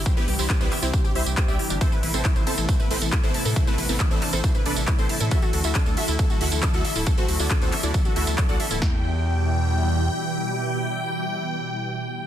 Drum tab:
RD |----------------|x-x-x-x-x-x-x-x-|x-x-x-x-x-x-x-x-|x-x-x-x-x-x-x-x-|
HH |xxoo-xo-xxoxxxox|xxoxxxoxxxoxxxoo|xxo--xoxxxoxxxox|xxoxxxoxxxoxxxoo|
TB |xx-xxx-xxx-xxx-x|xx-xxx-xxx-xxx-x|xx-xxx-xxx-xxx-x|xx-xxx-xxx-x-x-x|
CP |----x-x-----x---|----x-------x---|----x-x-----x---|----x-------x---|
SD |----------------|----------------|----------------|----------------|
BD |o---o---o---o---|o---o---o---o---|o---o---o---o---|o---o---o---o---|

RD |x-x-x-x-x-x-x-x-|----------------|----------------|
HH |xxoo-xoxxxoxxxox|----------------|----------------|
TB |xx-xxx-xxx-xxx-x|----------------|----------------|
CP |----x-x-----x---|----------------|----------------|
SD |----------------|o---------------|----------------|
BD |o---o---o---o---|o---------------|----------------|